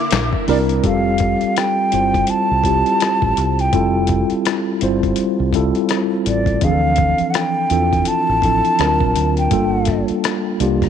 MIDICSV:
0, 0, Header, 1, 7, 480
1, 0, Start_track
1, 0, Tempo, 722892
1, 555, Time_signature, 4, 2, 24, 8
1, 7232, End_track
2, 0, Start_track
2, 0, Title_t, "Flute"
2, 0, Program_c, 0, 73
2, 0, Note_on_c, 0, 86, 80
2, 227, Note_off_c, 0, 86, 0
2, 332, Note_on_c, 0, 74, 80
2, 385, Note_off_c, 0, 74, 0
2, 568, Note_on_c, 0, 77, 81
2, 1046, Note_on_c, 0, 79, 91
2, 1056, Note_off_c, 0, 77, 0
2, 1527, Note_on_c, 0, 81, 108
2, 1537, Note_off_c, 0, 79, 0
2, 2396, Note_on_c, 0, 79, 74
2, 2406, Note_off_c, 0, 81, 0
2, 2869, Note_off_c, 0, 79, 0
2, 4168, Note_on_c, 0, 74, 76
2, 4408, Note_on_c, 0, 77, 91
2, 4418, Note_off_c, 0, 74, 0
2, 4849, Note_on_c, 0, 78, 67
2, 4859, Note_off_c, 0, 77, 0
2, 4884, Note_on_c, 0, 79, 90
2, 4894, Note_off_c, 0, 78, 0
2, 5364, Note_on_c, 0, 81, 101
2, 5374, Note_off_c, 0, 79, 0
2, 6226, Note_off_c, 0, 81, 0
2, 6234, Note_on_c, 0, 79, 68
2, 6681, Note_off_c, 0, 79, 0
2, 7232, End_track
3, 0, Start_track
3, 0, Title_t, "Tine electric piano"
3, 0, Program_c, 1, 4
3, 0, Control_c, 1, 64, 127
3, 316, Note_on_c, 1, 55, 94
3, 319, Note_on_c, 1, 60, 81
3, 322, Note_on_c, 1, 62, 80
3, 325, Note_on_c, 1, 64, 82
3, 328, Note_on_c, 1, 70, 102
3, 536, Note_off_c, 1, 55, 0
3, 538, Note_off_c, 1, 60, 0
3, 539, Note_off_c, 1, 62, 0
3, 541, Note_off_c, 1, 64, 0
3, 542, Note_off_c, 1, 70, 0
3, 551, Note_on_c, 1, 55, 76
3, 556, Note_on_c, 1, 60, 72
3, 559, Note_on_c, 1, 67, 75
3, 563, Note_on_c, 1, 65, 71
3, 565, Control_c, 1, 64, 0
3, 566, Note_on_c, 1, 69, 86
3, 671, Control_c, 1, 64, 127
3, 1215, Note_off_c, 1, 55, 0
3, 1218, Note_off_c, 1, 60, 0
3, 1219, Note_off_c, 1, 67, 0
3, 1221, Note_off_c, 1, 65, 0
3, 1223, Note_off_c, 1, 69, 0
3, 1274, Note_on_c, 1, 55, 62
3, 1279, Note_on_c, 1, 60, 57
3, 1283, Note_on_c, 1, 64, 52
3, 1284, Note_on_c, 1, 65, 53
3, 1289, Note_on_c, 1, 72, 62
3, 1716, Note_off_c, 1, 55, 0
3, 1719, Note_off_c, 1, 60, 0
3, 1721, Note_off_c, 1, 64, 0
3, 1721, Note_off_c, 1, 65, 0
3, 1723, Note_off_c, 1, 72, 0
3, 1758, Note_on_c, 1, 55, 60
3, 1761, Note_on_c, 1, 60, 55
3, 1764, Note_on_c, 1, 64, 56
3, 1767, Note_on_c, 1, 65, 54
3, 1772, Note_on_c, 1, 67, 66
3, 2418, Note_off_c, 1, 55, 0
3, 2420, Note_off_c, 1, 60, 0
3, 2422, Note_off_c, 1, 64, 0
3, 2423, Note_off_c, 1, 65, 0
3, 2426, Note_off_c, 1, 67, 0
3, 2475, Note_on_c, 1, 55, 79
3, 2480, Note_on_c, 1, 60, 76
3, 2484, Note_on_c, 1, 64, 75
3, 2486, Note_on_c, 1, 65, 71
3, 2490, Note_on_c, 1, 69, 92
3, 3137, Note_off_c, 1, 55, 0
3, 3140, Note_off_c, 1, 60, 0
3, 3141, Note_off_c, 1, 64, 0
3, 3142, Note_off_c, 1, 65, 0
3, 3145, Note_off_c, 1, 69, 0
3, 3196, Note_on_c, 1, 55, 74
3, 3198, Note_on_c, 1, 60, 65
3, 3202, Note_on_c, 1, 64, 65
3, 3207, Note_on_c, 1, 65, 62
3, 3210, Note_on_c, 1, 72, 81
3, 3637, Note_off_c, 1, 55, 0
3, 3638, Note_off_c, 1, 60, 0
3, 3640, Note_off_c, 1, 64, 0
3, 3642, Note_off_c, 1, 65, 0
3, 3644, Note_off_c, 1, 72, 0
3, 3678, Note_on_c, 1, 55, 68
3, 3680, Note_on_c, 1, 60, 71
3, 3684, Note_on_c, 1, 64, 69
3, 3687, Note_on_c, 1, 65, 71
3, 3689, Note_on_c, 1, 69, 86
3, 4338, Note_off_c, 1, 55, 0
3, 4340, Note_off_c, 1, 60, 0
3, 4342, Note_off_c, 1, 64, 0
3, 4343, Note_off_c, 1, 65, 0
3, 4344, Note_off_c, 1, 69, 0
3, 4399, Note_on_c, 1, 53, 79
3, 4402, Control_c, 1, 64, 0
3, 4403, Note_on_c, 1, 60, 68
3, 4406, Note_on_c, 1, 62, 77
3, 4408, Note_on_c, 1, 52, 77
3, 4413, Note_on_c, 1, 68, 75
3, 4455, Note_on_c, 1, 69, 86
3, 4457, Note_off_c, 1, 68, 0
3, 4539, Control_c, 1, 64, 127
3, 5059, Note_off_c, 1, 53, 0
3, 5061, Note_off_c, 1, 60, 0
3, 5063, Note_off_c, 1, 62, 0
3, 5064, Note_off_c, 1, 52, 0
3, 5087, Note_off_c, 1, 69, 0
3, 5116, Note_on_c, 1, 65, 63
3, 5119, Note_on_c, 1, 60, 60
3, 5121, Note_on_c, 1, 62, 55
3, 5125, Note_on_c, 1, 64, 63
3, 5129, Note_on_c, 1, 69, 73
3, 5557, Note_off_c, 1, 65, 0
3, 5558, Note_off_c, 1, 60, 0
3, 5560, Note_off_c, 1, 62, 0
3, 5562, Note_off_c, 1, 64, 0
3, 5564, Note_off_c, 1, 69, 0
3, 5598, Note_on_c, 1, 53, 61
3, 5602, Note_on_c, 1, 60, 50
3, 5605, Note_on_c, 1, 62, 54
3, 5607, Note_on_c, 1, 64, 56
3, 5612, Note_on_c, 1, 69, 69
3, 5836, Note_off_c, 1, 60, 0
3, 5837, Note_off_c, 1, 53, 0
3, 5838, Note_off_c, 1, 62, 0
3, 5841, Note_off_c, 1, 64, 0
3, 5841, Note_on_c, 1, 54, 67
3, 5842, Control_c, 1, 64, 0
3, 5844, Note_off_c, 1, 69, 0
3, 5844, Note_on_c, 1, 60, 58
3, 5846, Note_on_c, 1, 62, 67
3, 5851, Note_on_c, 1, 65, 67
3, 5855, Note_on_c, 1, 70, 82
3, 5946, Control_c, 1, 64, 127
3, 6279, Note_off_c, 1, 54, 0
3, 6281, Note_off_c, 1, 60, 0
3, 6282, Note_off_c, 1, 62, 0
3, 6284, Note_off_c, 1, 65, 0
3, 6286, Note_off_c, 1, 70, 0
3, 6316, Note_on_c, 1, 55, 78
3, 6319, Note_on_c, 1, 58, 76
3, 6323, Note_on_c, 1, 62, 71
3, 6324, Control_c, 1, 64, 0
3, 6326, Note_on_c, 1, 65, 78
3, 6330, Note_on_c, 1, 69, 99
3, 6443, Control_c, 1, 64, 127
3, 6978, Note_off_c, 1, 55, 0
3, 6979, Note_off_c, 1, 58, 0
3, 6981, Note_off_c, 1, 62, 0
3, 6983, Note_off_c, 1, 65, 0
3, 6985, Note_off_c, 1, 69, 0
3, 7038, Note_on_c, 1, 55, 79
3, 7042, Note_on_c, 1, 58, 70
3, 7045, Note_on_c, 1, 62, 73
3, 7050, Note_on_c, 1, 65, 70
3, 7051, Note_on_c, 1, 67, 72
3, 7232, Note_off_c, 1, 55, 0
3, 7232, Note_off_c, 1, 58, 0
3, 7232, Note_off_c, 1, 62, 0
3, 7232, Note_off_c, 1, 65, 0
3, 7232, Note_off_c, 1, 67, 0
3, 7232, End_track
4, 0, Start_track
4, 0, Title_t, "String machine"
4, 0, Program_c, 2, 50
4, 0, Note_on_c, 2, 50, 75
4, 0, Note_on_c, 2, 58, 75
4, 0, Note_on_c, 2, 64, 97
4, 545, Note_off_c, 2, 50, 0
4, 545, Note_off_c, 2, 58, 0
4, 545, Note_off_c, 2, 64, 0
4, 7232, End_track
5, 0, Start_track
5, 0, Title_t, "Fingered electric bass"
5, 0, Program_c, 3, 33
5, 80, Note_on_c, 3, 34, 91
5, 204, Note_off_c, 3, 34, 0
5, 321, Note_on_c, 3, 36, 94
5, 525, Note_off_c, 3, 36, 0
5, 558, Note_on_c, 3, 29, 87
5, 889, Note_off_c, 3, 29, 0
5, 1283, Note_on_c, 3, 31, 76
5, 1486, Note_off_c, 3, 31, 0
5, 1669, Note_on_c, 3, 36, 70
5, 1872, Note_off_c, 3, 36, 0
5, 2141, Note_on_c, 3, 33, 72
5, 2222, Note_off_c, 3, 33, 0
5, 2243, Note_on_c, 3, 36, 88
5, 2446, Note_off_c, 3, 36, 0
5, 2478, Note_on_c, 3, 29, 94
5, 2810, Note_off_c, 3, 29, 0
5, 3202, Note_on_c, 3, 31, 82
5, 3405, Note_off_c, 3, 31, 0
5, 3585, Note_on_c, 3, 36, 81
5, 3790, Note_off_c, 3, 36, 0
5, 4161, Note_on_c, 3, 33, 91
5, 4365, Note_off_c, 3, 33, 0
5, 4396, Note_on_c, 3, 38, 94
5, 4729, Note_off_c, 3, 38, 0
5, 5117, Note_on_c, 3, 40, 80
5, 5323, Note_off_c, 3, 40, 0
5, 5507, Note_on_c, 3, 33, 77
5, 5711, Note_off_c, 3, 33, 0
5, 5839, Note_on_c, 3, 38, 88
5, 5963, Note_off_c, 3, 38, 0
5, 5981, Note_on_c, 3, 34, 83
5, 6062, Note_off_c, 3, 34, 0
5, 6081, Note_on_c, 3, 38, 94
5, 6285, Note_off_c, 3, 38, 0
5, 6319, Note_on_c, 3, 31, 86
5, 6650, Note_off_c, 3, 31, 0
5, 7040, Note_on_c, 3, 36, 81
5, 7232, Note_off_c, 3, 36, 0
5, 7232, End_track
6, 0, Start_track
6, 0, Title_t, "Muted fingered electric bass strokes"
6, 949, Note_on_c, 9, 29, 42
6, 1015, Note_off_c, 9, 29, 0
6, 2867, Note_on_c, 9, 29, 44
6, 2934, Note_off_c, 9, 29, 0
6, 4785, Note_on_c, 9, 29, 44
6, 4852, Note_off_c, 9, 29, 0
6, 5360, Note_on_c, 9, 29, 42
6, 5426, Note_off_c, 9, 29, 0
6, 6708, Note_on_c, 9, 29, 43
6, 6775, Note_off_c, 9, 29, 0
6, 7232, End_track
7, 0, Start_track
7, 0, Title_t, "Drums"
7, 71, Note_on_c, 9, 42, 67
7, 83, Note_on_c, 9, 38, 104
7, 91, Note_on_c, 9, 39, 93
7, 137, Note_off_c, 9, 42, 0
7, 149, Note_off_c, 9, 38, 0
7, 157, Note_off_c, 9, 39, 0
7, 217, Note_on_c, 9, 36, 96
7, 284, Note_off_c, 9, 36, 0
7, 317, Note_on_c, 9, 46, 49
7, 384, Note_off_c, 9, 46, 0
7, 460, Note_on_c, 9, 42, 36
7, 526, Note_off_c, 9, 42, 0
7, 555, Note_on_c, 9, 42, 68
7, 556, Note_on_c, 9, 36, 100
7, 621, Note_off_c, 9, 42, 0
7, 622, Note_off_c, 9, 36, 0
7, 784, Note_on_c, 9, 42, 57
7, 797, Note_on_c, 9, 36, 87
7, 850, Note_off_c, 9, 42, 0
7, 864, Note_off_c, 9, 36, 0
7, 935, Note_on_c, 9, 42, 29
7, 1001, Note_off_c, 9, 42, 0
7, 1039, Note_on_c, 9, 42, 77
7, 1047, Note_on_c, 9, 37, 90
7, 1106, Note_off_c, 9, 42, 0
7, 1113, Note_off_c, 9, 37, 0
7, 1275, Note_on_c, 9, 42, 60
7, 1341, Note_off_c, 9, 42, 0
7, 1423, Note_on_c, 9, 36, 81
7, 1427, Note_on_c, 9, 42, 32
7, 1490, Note_off_c, 9, 36, 0
7, 1493, Note_off_c, 9, 42, 0
7, 1507, Note_on_c, 9, 42, 74
7, 1573, Note_off_c, 9, 42, 0
7, 1750, Note_on_c, 9, 36, 69
7, 1759, Note_on_c, 9, 42, 62
7, 1817, Note_off_c, 9, 36, 0
7, 1825, Note_off_c, 9, 42, 0
7, 1900, Note_on_c, 9, 42, 29
7, 1966, Note_off_c, 9, 42, 0
7, 1995, Note_on_c, 9, 42, 68
7, 2007, Note_on_c, 9, 37, 90
7, 2061, Note_off_c, 9, 42, 0
7, 2074, Note_off_c, 9, 37, 0
7, 2138, Note_on_c, 9, 36, 72
7, 2205, Note_off_c, 9, 36, 0
7, 2238, Note_on_c, 9, 42, 64
7, 2305, Note_off_c, 9, 42, 0
7, 2384, Note_on_c, 9, 42, 28
7, 2450, Note_off_c, 9, 42, 0
7, 2476, Note_on_c, 9, 36, 103
7, 2476, Note_on_c, 9, 42, 66
7, 2542, Note_off_c, 9, 42, 0
7, 2543, Note_off_c, 9, 36, 0
7, 2703, Note_on_c, 9, 42, 56
7, 2717, Note_on_c, 9, 36, 76
7, 2770, Note_off_c, 9, 42, 0
7, 2784, Note_off_c, 9, 36, 0
7, 2854, Note_on_c, 9, 42, 29
7, 2920, Note_off_c, 9, 42, 0
7, 2958, Note_on_c, 9, 42, 85
7, 2966, Note_on_c, 9, 37, 91
7, 3024, Note_off_c, 9, 42, 0
7, 3032, Note_off_c, 9, 37, 0
7, 3194, Note_on_c, 9, 42, 58
7, 3261, Note_off_c, 9, 42, 0
7, 3342, Note_on_c, 9, 36, 79
7, 3344, Note_on_c, 9, 42, 32
7, 3409, Note_off_c, 9, 36, 0
7, 3411, Note_off_c, 9, 42, 0
7, 3425, Note_on_c, 9, 42, 77
7, 3492, Note_off_c, 9, 42, 0
7, 3670, Note_on_c, 9, 36, 64
7, 3677, Note_on_c, 9, 42, 60
7, 3736, Note_off_c, 9, 36, 0
7, 3744, Note_off_c, 9, 42, 0
7, 3818, Note_on_c, 9, 42, 28
7, 3884, Note_off_c, 9, 42, 0
7, 3910, Note_on_c, 9, 42, 62
7, 3922, Note_on_c, 9, 37, 91
7, 3976, Note_off_c, 9, 42, 0
7, 3989, Note_off_c, 9, 37, 0
7, 4157, Note_on_c, 9, 42, 61
7, 4223, Note_off_c, 9, 42, 0
7, 4290, Note_on_c, 9, 36, 76
7, 4297, Note_on_c, 9, 42, 28
7, 4356, Note_off_c, 9, 36, 0
7, 4363, Note_off_c, 9, 42, 0
7, 4390, Note_on_c, 9, 42, 67
7, 4394, Note_on_c, 9, 36, 97
7, 4457, Note_off_c, 9, 42, 0
7, 4460, Note_off_c, 9, 36, 0
7, 4620, Note_on_c, 9, 42, 57
7, 4635, Note_on_c, 9, 36, 90
7, 4686, Note_off_c, 9, 42, 0
7, 4702, Note_off_c, 9, 36, 0
7, 4770, Note_on_c, 9, 42, 31
7, 4836, Note_off_c, 9, 42, 0
7, 4874, Note_on_c, 9, 42, 83
7, 4881, Note_on_c, 9, 37, 95
7, 4940, Note_off_c, 9, 42, 0
7, 4948, Note_off_c, 9, 37, 0
7, 5112, Note_on_c, 9, 42, 51
7, 5179, Note_off_c, 9, 42, 0
7, 5263, Note_on_c, 9, 36, 78
7, 5266, Note_on_c, 9, 42, 33
7, 5330, Note_off_c, 9, 36, 0
7, 5333, Note_off_c, 9, 42, 0
7, 5347, Note_on_c, 9, 42, 76
7, 5414, Note_off_c, 9, 42, 0
7, 5591, Note_on_c, 9, 36, 67
7, 5600, Note_on_c, 9, 42, 55
7, 5658, Note_off_c, 9, 36, 0
7, 5667, Note_off_c, 9, 42, 0
7, 5742, Note_on_c, 9, 42, 32
7, 5808, Note_off_c, 9, 42, 0
7, 5835, Note_on_c, 9, 42, 62
7, 5848, Note_on_c, 9, 37, 94
7, 5901, Note_off_c, 9, 42, 0
7, 5914, Note_off_c, 9, 37, 0
7, 5979, Note_on_c, 9, 36, 68
7, 6046, Note_off_c, 9, 36, 0
7, 6079, Note_on_c, 9, 42, 62
7, 6146, Note_off_c, 9, 42, 0
7, 6221, Note_on_c, 9, 42, 31
7, 6287, Note_off_c, 9, 42, 0
7, 6314, Note_on_c, 9, 42, 70
7, 6316, Note_on_c, 9, 36, 96
7, 6380, Note_off_c, 9, 42, 0
7, 6382, Note_off_c, 9, 36, 0
7, 6543, Note_on_c, 9, 42, 57
7, 6558, Note_on_c, 9, 36, 76
7, 6564, Note_on_c, 9, 37, 24
7, 6609, Note_off_c, 9, 42, 0
7, 6624, Note_off_c, 9, 36, 0
7, 6630, Note_off_c, 9, 37, 0
7, 6695, Note_on_c, 9, 42, 30
7, 6761, Note_off_c, 9, 42, 0
7, 6799, Note_on_c, 9, 42, 80
7, 6807, Note_on_c, 9, 37, 92
7, 6865, Note_off_c, 9, 42, 0
7, 6873, Note_off_c, 9, 37, 0
7, 7039, Note_on_c, 9, 42, 60
7, 7105, Note_off_c, 9, 42, 0
7, 7184, Note_on_c, 9, 36, 80
7, 7188, Note_on_c, 9, 42, 33
7, 7196, Note_on_c, 9, 37, 35
7, 7232, Note_off_c, 9, 36, 0
7, 7232, Note_off_c, 9, 37, 0
7, 7232, Note_off_c, 9, 42, 0
7, 7232, End_track
0, 0, End_of_file